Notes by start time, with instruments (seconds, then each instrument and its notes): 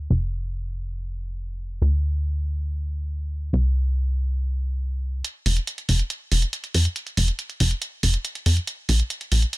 0.10 analog synth bass F1
1.82 analog synth bass D2
3.53 analog synth bass C2
5.25 closed hi-hat
5.46 analog synth bass F1, open hi-hat
5.57 closed hi-hat
5.67 closed hi-hat
5.78 closed hi-hat
5.89 analog synth bass F1, open hi-hat
5.99 closed hi-hat
6.10 closed hi-hat
6.32 analog synth bass F1, open hi-hat
6.42 closed hi-hat
6.53 closed hi-hat
6.64 closed hi-hat
6.74 analog synth bass F2, open hi-hat
6.85 closed hi-hat
6.96 closed hi-hat
7.07 closed hi-hat
7.17 analog synth bass F1, open hi-hat
7.28 closed hi-hat
7.39 closed hi-hat
7.50 closed hi-hat
7.60 analog synth bass F1, open hi-hat
7.71 closed hi-hat
7.82 closed hi-hat
8.03 analog synth bass F1, open hi-hat
8.14 closed hi-hat
8.25 closed hi-hat
8.35 closed hi-hat
8.46 analog synth bass F2, open hi-hat
8.57 closed hi-hat
8.67 closed hi-hat
8.89 analog synth bass A#1, open hi-hat
9.00 closed hi-hat
9.10 closed hi-hat
9.21 closed hi-hat
9.32 analog synth bass A#1, open hi-hat
9.42 closed hi-hat
9.53 closed hi-hat